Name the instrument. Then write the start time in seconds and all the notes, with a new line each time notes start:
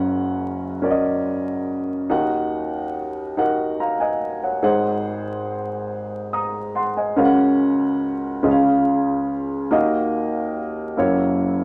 upright piano
Already playing: F#1 F#2 C#4 F#4 A#4 F#5
0.82 C#4 F#4 A#4 D5
0.90 D#5
2.10 D#2 D#3 D#4 F#4 A#4 F#5
3.37 D#4 F#4 A#4 F#5
3.80 F5 A#5
4.00 D#5 G#5
4.43 C#5 F#5
4.62 G#1 G#2 D#4 G#4 C5 F#5
6.33 A#5 D#6
6.75 F#5 C6
6.97 D#5 G#5
7.16 C#2 C#3 C#4 F#4 A#4 F5
7.25 F#5
8.43 C#2 C#3 C#4 F4 G#4 D#5
8.51 F5
9.71 D#2 D#3 A#3 D#4 F#4 D#5
10.97 F#1 F#2 A#3 E4 F#4 C#5